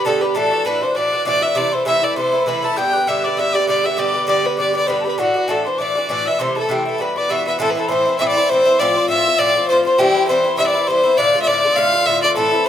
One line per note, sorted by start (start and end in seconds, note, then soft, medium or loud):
0.05 0.22 G2 medium
0.05 0.22 D3 medium
0.05 0.22 B3 medium
0.05 0.20 G4 medium
0.05 0.23 A4 medium
0.05 0.22 A5 medium
0.21 0.35 D3 soft
0.21 0.36 B3 soft
0.21 0.35 G4 medium
0.21 0.35 B4 medium
0.21 0.37 B5 medium
0.35 0.52 A2 medium
0.35 0.52 E3 medium
0.35 0.52 D4 medium
0.35 0.50 F#4 medium
0.35 0.67 A4 loud
0.35 0.65 A5 medium
0.51 0.64 E3 soft
0.51 0.66 D4 soft
0.51 0.65 F#4 soft
0.65 0.82 A2 medium
0.65 0.82 E3 medium
0.65 0.82 D4 medium
0.65 0.80 F#4 medium
0.65 0.84 B4 medium
0.65 0.84 B5 medium
0.81 0.95 E3 soft
0.81 0.96 D4 soft
0.81 0.95 F#4 soft
0.81 0.97 C5 medium
0.81 0.97 C6 medium
0.95 1.12 A2 medium
0.95 1.13 E3 medium
0.95 1.12 D4 medium
0.95 1.10 F#4 medium
0.95 1.26 D5 medium
0.95 1.25 D6 medium
1.12 1.25 E3 soft
1.12 1.26 D4 soft
1.12 1.26 F#4 medium
1.25 1.42 A2 medium
1.25 1.43 E3 medium
1.25 1.42 D4 medium
1.25 1.40 F#4 medium
1.25 1.44 D5 loud
1.25 1.44 D6 medium
1.41 1.55 E3 soft
1.41 1.56 D4 soft
1.41 1.55 F#4 soft
1.41 1.59 E5 medium
1.41 1.57 E6 medium
1.55 1.72 C3 medium
1.55 1.73 E3 medium
1.55 1.72 A3 medium
1.55 1.70 E4 medium
1.55 1.75 D5 loud
1.55 1.74 D6 medium
1.72 1.85 E3 soft
1.72 1.86 A3 soft
1.72 1.86 E4 soft
1.72 1.87 C5 loud
1.72 1.85 C6 medium
1.85 2.03 C3 medium
1.85 2.03 E3 medium
1.85 2.03 A3 medium
1.85 2.01 E4 medium
1.85 2.05 E5 medium
1.85 2.02 E6 medium
2.02 2.16 E3 soft
2.02 2.17 A3 soft
2.02 2.16 E4 soft
2.02 2.17 D5 medium
2.02 2.18 D6 medium
2.16 2.33 C3 medium
2.16 2.34 E3 medium
2.16 2.33 A3 medium
2.16 2.31 E4 medium
2.16 2.49 C5 medium
2.16 2.46 C6 medium
2.32 2.46 E3 soft
2.32 2.46 A3 soft
2.32 2.46 E4 medium
2.46 2.63 C3 medium
2.46 2.64 E3 medium
2.46 2.63 A3 medium
2.46 2.61 E4 medium
2.46 2.66 B4 medium
2.46 2.78 B5 medium
2.62 2.77 E3 soft
2.62 2.77 A3 soft
2.62 2.76 E4 medium
2.62 2.79 A5 medium
2.76 2.93 G2 medium
2.76 2.94 D3 medium
2.76 2.94 B3 medium
2.76 2.92 G4 medium
2.76 3.09 G5 loud
2.76 2.95 G6 medium
2.93 3.07 D3 soft
2.93 3.08 B3 soft
2.93 3.07 G4 medium
2.93 3.09 F#6 medium
3.07 3.24 G2 medium
3.07 3.24 D3 medium
3.07 3.24 B3 medium
3.07 3.23 G4 medium
3.07 3.26 E5 medium
3.07 3.25 E6 medium
3.24 3.37 D3 soft
3.24 3.38 B3 soft
3.24 3.37 G4 soft
3.24 3.40 D5 medium
3.24 3.39 D6 medium
3.37 3.54 G2 medium
3.37 3.55 D3 medium
3.37 3.55 B3 medium
3.37 3.53 G4 medium
3.37 3.56 E5 loud
3.37 3.54 E6 medium
3.53 3.68 B3 soft
3.53 3.68 G4 medium
3.53 3.68 D5 loud
3.53 3.67 D6 medium
3.58 3.67 D3 soft
3.67 3.84 G2 medium
3.67 3.85 D3 medium
3.67 3.84 B3 medium
3.67 3.82 G4 medium
3.67 3.87 D5 medium
3.67 3.86 D6 medium
3.84 3.97 D3 soft
3.84 3.97 B3 soft
3.84 3.98 G4 medium
3.84 4.00 E5 medium
3.84 4.00 E6 medium
3.97 4.14 G2 medium
3.97 4.15 D3 medium
3.97 4.14 B3 medium
3.97 4.13 G4 medium
3.97 4.28 D5 medium
3.97 4.28 D6 medium
4.14 4.27 D3 soft
4.14 4.28 B3 soft
4.14 4.28 G4 soft
4.27 4.44 G2 medium
4.27 4.45 D3 medium
4.27 4.44 B3 medium
4.27 4.42 G4 medium
4.27 4.47 D5 medium
4.27 4.44 D6 medium
4.43 4.57 D3 soft
4.43 4.58 B3 soft
4.43 4.58 G4 soft
4.43 4.59 B4 medium
4.57 4.74 G2 medium
4.57 4.75 D3 medium
4.57 4.74 B3 medium
4.57 4.72 G4 medium
4.57 4.75 D5 medium
4.57 4.74 D6 medium
4.73 4.87 D3 soft
4.73 4.88 B3 soft
4.73 4.88 G4 medium
4.73 4.88 D5 loud
4.73 4.90 D6 medium
4.86 5.05 G2 medium
4.86 5.05 D3 medium
4.86 5.05 B3 medium
4.86 5.03 G4 medium
4.86 4.92 C5 medium
4.86 5.00 B5 medium
4.91 5.06 B4 medium
5.01 5.18 G4 soft
5.01 5.06 A5 medium
5.05 5.18 D3 soft
5.05 5.19 B3 soft
5.05 5.19 B4 medium
5.05 5.20 B5 medium
5.18 5.35 A2 medium
5.18 5.35 E3 medium
5.18 5.35 D4 medium
5.18 5.52 F#4 medium
5.18 5.33 F#4 medium
5.18 5.50 F#5 medium
5.34 5.48 E3 soft
5.34 5.48 D4 soft
5.34 5.48 F#4 medium
5.48 5.65 A2 medium
5.48 5.66 E3 medium
5.48 5.65 D4 medium
5.48 5.63 F#4 medium
5.48 5.68 A4 medium
5.48 5.64 A5 medium
5.65 5.78 E3 soft
5.65 5.79 D4 soft
5.65 5.79 F#4 soft
5.65 5.83 C5 medium
5.65 5.80 C6 medium
5.78 5.95 A2 medium
5.78 5.96 E3 medium
5.78 5.96 D4 medium
5.78 5.94 F#4 medium
5.78 6.10 D5 medium
5.78 6.08 D6 medium
5.95 6.08 E3 soft
5.95 6.09 D4 soft
5.95 6.09 F#4 medium
6.09 6.26 A2 medium
6.09 6.26 E3 medium
6.09 6.26 D4 medium
6.09 6.24 F#4 medium
6.09 6.29 D5 medium
6.09 6.27 D6 medium
6.25 6.38 E3 soft
6.25 6.40 D4 soft
6.25 6.39 F#4 soft
6.25 6.42 E5 medium
6.25 6.41 E6 medium
6.39 6.56 C3 medium
6.39 6.56 E3 medium
6.39 6.55 A3 medium
6.39 6.54 E4 medium
6.39 6.57 C5 medium
6.39 6.58 C6 medium
6.55 6.68 E3 soft
6.55 6.69 A3 soft
6.55 6.69 E4 soft
6.55 6.72 A4 medium
6.55 6.72 A5 medium
6.69 6.86 C3 medium
6.69 6.86 E3 medium
6.69 6.86 A3 medium
6.69 6.84 E4 medium
6.69 6.87 G4 medium
6.69 6.99 G5 medium
6.85 6.99 E3 soft
6.85 7.00 A3 soft
6.85 6.99 E4 soft
6.85 7.02 A4 medium
6.98 7.16 G2 medium
6.98 7.16 E3 medium
6.98 7.17 B3 medium
6.98 7.15 F#4 medium
6.98 7.16 B4 medium
6.98 7.19 B5 medium
7.16 7.29 E3 soft
7.16 7.30 B3 soft
7.16 7.30 F#4 soft
7.16 7.32 D5 medium
7.16 7.31 D6 medium
7.29 7.46 G2 medium
7.29 7.47 E3 medium
7.29 7.46 B3 medium
7.29 7.44 F#4 medium
7.29 7.46 E5 medium
7.29 7.46 E6 medium
7.45 7.58 E3 soft
7.45 7.60 B3 soft
7.45 7.59 F#4 soft
7.45 7.59 E5 medium
7.45 7.59 E6 medium
7.59 7.76 A2 medium
7.59 7.76 E3 medium
7.59 7.76 C4 medium
7.59 7.74 E4 loud
7.59 7.72 A4 loud
7.59 7.69 A5 medium
7.70 7.81 B4 medium
7.75 7.88 E3 soft
7.75 7.90 C4 soft
7.75 7.89 E4 soft
7.75 7.91 A5 medium
7.79 7.89 A4 loud
7.88 8.06 A2 medium
7.88 8.06 E3 medium
7.88 8.06 C4 medium
7.88 8.04 E4 medium
7.88 8.18 C5 medium
7.88 8.21 C6 medium
8.06 8.19 E3 soft
8.06 8.20 C4 soft
8.06 8.19 E4 medium
8.19 8.36 A2 medium
8.19 8.36 E3 medium
8.19 8.37 C4 medium
8.19 8.35 E4 medium
8.19 8.27 E5 medium
8.19 8.29 E6 medium
8.27 8.50 D5 loud
8.27 8.51 D6 medium
8.36 8.50 E3 soft
8.36 8.50 C4 soft
8.36 8.49 E4 medium
8.49 8.66 A2 medium
8.49 8.67 E3 medium
8.49 8.66 C4 medium
8.49 8.81 C5 loud
8.49 8.81 C6 medium
8.53 8.64 E4 medium
8.65 8.80 E3 soft
8.65 8.80 C4 medium
8.65 8.79 E4 medium
8.79 8.96 A2 medium
8.79 8.96 F3 medium
8.79 8.96 C4 medium
8.79 8.94 F4 loud
8.79 9.08 D5 medium
8.79 9.09 D6 loud
8.95 9.08 F3 soft
8.95 9.09 C4 medium
8.95 9.09 F4 medium
9.08 9.25 A2 medium
9.08 9.26 F3 medium
9.08 9.26 C4 medium
9.08 9.24 F4 medium
9.08 9.40 E5 loud
9.08 9.43 E6 medium
9.25 9.38 F3 soft
9.25 9.39 C4 soft
9.25 9.39 F4 medium
9.38 9.55 A2 medium
9.38 9.56 F3 medium
9.38 9.56 C4 medium
9.38 9.54 F4 medium
9.38 9.67 D5 loud
9.38 9.71 D6 loud
9.55 9.69 F3 soft
9.55 9.70 C4 soft
9.55 9.69 F4 medium
9.68 9.85 A2 medium
9.68 9.86 F3 medium
9.68 9.86 C4 medium
9.68 9.84 C5 loud
9.68 9.85 C6 medium
9.72 9.84 F4 medium
9.85 9.99 F3 soft
9.85 9.99 C4 medium
9.85 9.98 F4 medium
9.85 10.00 C5 medium
9.85 10.01 C6 medium
9.98 10.15 G2 medium
9.98 10.15 E3 loud
9.98 10.15 C4 medium
9.98 10.13 E4 medium
9.98 10.27 G4 loud
9.98 10.30 G5 loud
10.14 10.28 E3 medium
10.14 10.29 C4 medium
10.14 10.28 E4 medium
10.27 10.44 G2 medium
10.27 10.45 E3 medium
10.27 10.45 C4 medium
10.27 10.43 E4 medium
10.27 10.56 C5 medium
10.27 10.60 C6 medium
10.44 10.57 E3 soft
10.44 10.58 C4 soft
10.44 10.58 E4 medium
10.57 10.74 G2 medium
10.57 10.75 E3 medium
10.57 10.74 C4 medium
10.57 10.73 E4 medium
10.57 10.65 E5 loud
10.57 10.68 E6 medium
10.66 10.89 D5 medium
10.66 10.89 D6 loud
10.74 10.87 E3 soft
10.74 10.88 C4 soft
10.74 10.87 E4 medium
10.87 11.04 G2 medium
10.87 11.04 E3 medium
10.87 11.04 C4 medium
10.87 11.02 E4 medium
10.87 11.19 C5 loud
10.87 11.17 C6 medium
11.04 11.18 E3 soft
11.04 11.18 C4 medium
11.04 11.17 E4 medium
11.17 11.34 A2 medium
11.17 11.34 D3 medium
11.17 11.34 A3 medium
11.17 11.32 F4 loud
11.17 11.41 D5 loud
11.17 11.40 D6 loud
11.33 11.47 D3 soft
11.33 11.48 A3 soft
11.33 11.47 F4 medium
11.42 11.49 E5 medium
11.47 11.63 A2 medium
11.47 11.64 D3 medium
11.47 11.63 A3 medium
11.47 11.61 F4 medium
11.47 11.77 D5 loud
11.47 11.78 D6 medium
11.63 11.76 D3 soft
11.63 11.77 A3 soft
11.63 11.76 F4 medium
11.76 11.93 A2 medium
11.76 11.93 D3 medium
11.76 11.93 A3 loud
11.76 11.91 F4 medium
11.76 12.07 F5 loud
11.76 12.09 F6 loud
11.92 12.06 D3 soft
11.92 12.07 A3 medium
11.92 12.06 F4 medium
12.05 12.22 A2 medium
12.05 12.23 D3 medium
12.05 12.22 A3 medium
12.05 12.20 F4 medium
12.05 12.22 E5 loud
12.05 12.22 E6 medium
12.22 12.36 D3 soft
12.22 12.36 A3 medium
12.22 12.35 F4 medium
12.22 12.35 D5 loud
12.22 12.38 D6 medium
12.35 12.52 A2 medium
12.35 12.53 E3 medium
12.35 12.52 C4 medium
12.35 12.51 E4 medium
12.35 12.67 A4 loud
12.35 12.68 A5 loud
12.52 12.65 E3 soft
12.52 12.66 C4 medium
12.52 12.65 E4 medium
12.64 12.69 A2 medium
12.64 12.69 C5 medium